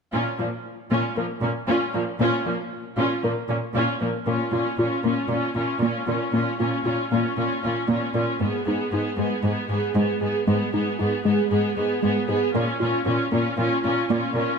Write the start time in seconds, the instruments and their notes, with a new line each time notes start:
0.13 cello section A#2, synth arpeggio sound A#3, viola section C#4 F4
0.39 cello section A#2, viola section F3 A#3, synth arpeggio sound F4
0.91 cello section A#2, synth arpeggio sound A#3, viola section C#4 F4
1.16 cello section A#2, viola section F3 A#3, synth arpeggio sound A#4
1.43 cello section A#2, viola section A#3 C#4, synth arpeggio sound A#4
1.68 cello section A#2, synth arpeggio sound A#3, viola section C#4 F4
1.94 cello section A#2, viola section F3 A#3, synth arpeggio sound A#4
2.20 cello section A#2, synth arpeggio sound A#3, viola section C#4 F4
2.46 cello section A#2, viola section F3 A#3, synth arpeggio sound F4
2.97 cello section A#2, synth arpeggio sound A#3, viola section C#4 F4
3.23 cello section A#2, viola section F3 A#3, synth arpeggio sound A#4
3.49 cello section A#2, viola section A#3 C#4, synth arpeggio sound A#4
3.75 cello section A#2, synth arpeggio sound A#3, viola section C#4 F4
4.01 cello section A#2, viola section F3 A#3, synth arpeggio sound A#4
4.26 cello section A#2, synth arpeggio sound A#3, viola section C#4 F4
4.52 cello section A#2, viola section C#4 F4, synth arpeggio sound F4
4.78 cello section A#2, viola section C#4 F4, synth arpeggio sound F4
5.04 cello section A#2, synth arpeggio sound A#3, viola section C#4 F4
5.29 cello section A#2, viola section C#4 F4
5.55 cello section A#2, viola section C#4 F4
5.82 cello section A#2, synth arpeggio sound A#3, viola section C#4 F4
6.07 cello section A#2, viola section C#4 F4, synth arpeggio sound A#4
6.33 cello section A#2, synth arpeggio sound A#3, viola section C#4 F4
6.59 cello section A#2, viola section C#4 F4, synth arpeggio sound F4
6.84 cello section A#2, viola section C#4 F4, synth arpeggio sound F4
7.12 cello section A#2, synth arpeggio sound A#3, viola section C#4 F4
7.37 cello section A#2, viola section C#4 F4
7.63 cello section A#2, viola section C#4 F4
7.88 cello section A#2, synth arpeggio sound A#3, viola section C#4 F4
8.15 cello section A#2, viola section C#4 F4, synth arpeggio sound A#4
8.39 cello section G#2, synth arpeggio sound G#3, viola section B3 G#4
8.66 cello section G#2, viola section B3 G#4, synth arpeggio sound D#4
8.92 cello section G#2, viola section B3 G#4, synth arpeggio sound D#4
9.17 cello section G#2, synth arpeggio sound G#3, viola section B3 G#4
9.44 cello section G#2, viola section B3 G#4
9.70 cello section G#2, viola section B3 G#4
9.95 cello section G#2, synth arpeggio sound G#3, viola section B3 G#4
10.21 cello section G#2, viola section B3 G#4, synth arpeggio sound G#4
10.47 cello section G#2, synth arpeggio sound G#3, viola section B3 G#4
10.73 cello section G#2, viola section B3 G#4, synth arpeggio sound D#4
10.99 cello section G#2, viola section B3 G#4, synth arpeggio sound D#4
11.25 cello section G#2, synth arpeggio sound G#3, viola section B3 G#4
11.50 cello section G#2, viola section B3 G#4
11.76 cello section G#2, viola section B3 G#4
12.02 cello section G#2, synth arpeggio sound G#3, viola section B3 G#4
12.28 cello section G#2, viola section B3 G#4, synth arpeggio sound G#4
12.54 cello section A#2, synth arpeggio sound A#3, viola section C#4 F4
12.80 cello section A#2, viola section C#4 F4, synth arpeggio sound F4
13.06 cello section A#2, viola section C#4 F4, synth arpeggio sound F4
13.32 cello section A#2, synth arpeggio sound A#3, viola section C#4 F4
13.57 cello section A#2, viola section C#4 F4
13.84 cello section A#2, viola section C#4 F4
14.10 cello section A#2, synth arpeggio sound A#3, viola section C#4 F4
14.35 cello section A#2, viola section C#4 F4, synth arpeggio sound A#4